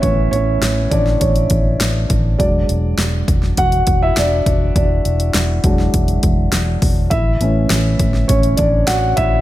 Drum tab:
HH |x-x-x-x-xxx-x-x-|x-x-x-x-xxx-x-x-|x-xxx-x-xxx-x-o-|x-x-x-x-xxx-x-x-|
CP |----x-------x---|----x-------x---|----x-------x---|----x-------x---|
SD |----o--o----o---|----o--o----o---|----o--o----o---|----o--o----o---|
BD |o-----o-o-o---o-|o-----o-o-o---o-|o-----o-o-o---o-|o-----o-o-o---o-|